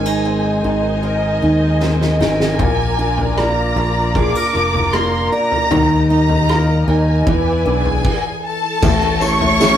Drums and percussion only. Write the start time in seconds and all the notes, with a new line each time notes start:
1.82 snare
2.01 snare
2.21 snare
2.40 snare
2.59 kick, floor tom
3.18 floor tom
3.38 cross-stick
4.15 kick, floor tom
4.74 floor tom
4.93 cross-stick
5.52 floor tom
5.71 floor tom
6.29 floor tom
6.50 cross-stick
7.27 kick, floor tom
7.85 floor tom
8.04 kick, crash
8.83 kick, floor tom, crash, tambourine
9.21 tambourine
9.41 floor tom
9.61 snare, tambourine